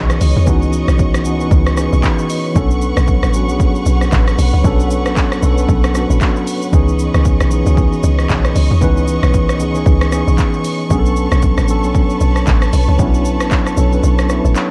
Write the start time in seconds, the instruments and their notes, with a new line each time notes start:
Already playing: log drum bass B1, tine electric piano E3 B3 C#4 D#4 F#4 G#4, string section B4 C#5 D#5 C#6
0.10 cross-stick, shaker
0.21 log drum bass C#2, open hi-hat, shaker
0.36 log drum bass E2
0.46 log drum bass C#2, tine electric piano E3 B3 C#4 D#4 F#4, kick, shaker
0.62 shaker
0.73 shaker
0.88 log drum bass B1, cross-stick, shaker
0.99 kick, shaker
1.14 cross-stick, shaker
1.24 log drum bass C#2, tine electric piano E3 B3 C#4 D#4 F#4, shaker
1.39 tine electric piano E3 B3 C#4 D#4 B4, shaker
1.51 log drum bass C#2, kick, shaker
1.66 cross-stick, shaker
1.76 tine electric piano E3 B3 C#4 D#4 G#4, cross-stick, shaker
1.93 log drum bass B1, shaker
2.03 tine electric piano D#4 B4, kick, clap, shaker
2.19 shaker
2.30 tine electric piano F#4 D#5, open hi-hat, shaker
2.45 tine electric piano E4 C#5
2.54 log drum bass B1, tine electric piano F#3 B3 C#4 D4 A4, string section C#5 F#5, kick, shaker
2.71 shaker
2.82 shaker
2.97 log drum bass B1, cross-stick, shaker
3.08 kick, shaker
3.23 log drum bass A1, cross-stick, shaker
3.33 tine electric piano F#3 B3 C#4 D4 F#4, shaker
3.48 log drum bass B1, tine electric piano F#3 B3 C#4 D4 G#4, shaker
3.60 kick, shaker
3.75 shaker
3.86 log drum bass B1, shaker
4.01 cross-stick, shaker
4.12 log drum bass A1, kick, clap, shaker
4.28 cross-stick, shaker
4.38 log drum bass B1, open hi-hat, shaker
4.53 log drum bass C#2
4.63 log drum bass B1, tine electric piano F#3 B3 C#4 D4 A4, kick, shaker
4.80 shaker
4.91 shaker
5.06 log drum bass A1, cross-stick, shaker
5.17 kick, clap, shaker
5.32 cross-stick, shaker
5.42 log drum bass B1, tine electric piano F#3 B3 C#4 D4 A4, shaker
5.57 tine electric piano F#3 B3 C#4 D4 A4, shaker
5.69 log drum bass B1, kick, shaker
5.84 cross-stick, shaker
5.94 tine electric piano F#3 B3 C#4 D4 F#4, cross-stick, shaker
6.10 log drum bass A1, shaker
6.21 kick, clap, shaker
6.36 shaker
6.47 open hi-hat, shaker
6.62 shaker
6.72 log drum bass C#2, tine electric piano E3 B3 C#4 D#4 G#4, string section C#5 D#5 C#6, kick, shaker
6.88 shaker
6.99 shaker
7.14 log drum bass C#2, cross-stick, shaker
7.25 kick, shaker
7.41 log drum bass B1, cross-stick, shaker
7.50 tine electric piano E3 B3 C#4 D#4 G#4, shaker
7.65 log drum bass C#2, tine electric piano E3 B3 C#4 D#4 F#4, shaker
7.75 tine electric piano G#4, kick, shaker
7.93 shaker
8.03 log drum bass C#2, shaker
8.19 cross-stick, shaker
8.29 log drum bass B1, kick, clap, shaker
8.45 cross-stick, shaker
8.56 log drum bass C#2, open hi-hat, shaker
8.71 log drum bass E2
8.80 log drum bass C#2, tine electric piano E3 B3 C#4 D#4 B4, kick, shaker
8.97 shaker
9.08 shaker
9.23 log drum bass B1, cross-stick, shaker
9.34 kick, shaker
9.49 cross-stick, shaker
9.59 log drum bass C#2, tine electric piano E3 B3 C#4 D#4 G#4, shaker
9.74 tine electric piano E3 B3 C#4 D#4 G#4, shaker
9.86 log drum bass C#2, kick, shaker
10.01 cross-stick, shaker
10.11 tine electric piano E3 B3 C#4 D#4 G#4, cross-stick, shaker
10.27 log drum bass B1, shaker
10.38 kick, clap, shaker
10.53 shaker
10.64 open hi-hat, shaker
10.89 log drum bass B1, tine electric piano F#3 B3 C#4 D4 G#4, string section B4 C#5 A5, kick, shaker
10.99 tine electric piano A4
11.06 shaker
11.16 shaker
11.32 log drum bass B1, cross-stick, shaker
11.42 kick, shaker
11.58 log drum bass A1, cross-stick, shaker
11.68 tine electric piano F#3 B3 C#4 D4 A4, shaker
11.83 log drum bass B1, tine electric piano F#3 B3 C#4 D4 A4, shaker
11.95 kick, shaker
12.10 shaker
12.21 log drum bass B1, shaker
12.36 cross-stick, shaker
12.47 log drum bass A1, kick, clap, shaker
12.62 cross-stick, shaker
12.73 log drum bass B1, open hi-hat, shaker
12.88 log drum bass C#2
12.98 log drum bass B1, tine electric piano F#3 B3 C#4 D4 E4, kick, shaker
13.14 shaker
13.25 shaker
13.40 log drum bass A1, cross-stick, shaker
13.51 kick, clap, shaker
13.66 cross-stick, shaker
13.76 log drum bass B1, tine electric piano F#3 B3 C#4 D4 A4, shaker
13.91 tine electric piano F#3 B3 C#4 D4 B4, shaker
14.03 log drum bass B1, shaker
14.19 cross-stick, shaker
14.29 tine electric piano F#3 B3 C#4 D4 E4, cross-stick, shaker
14.45 log drum bass A1, shaker
14.55 tine electric piano E4 C#5, clap, shaker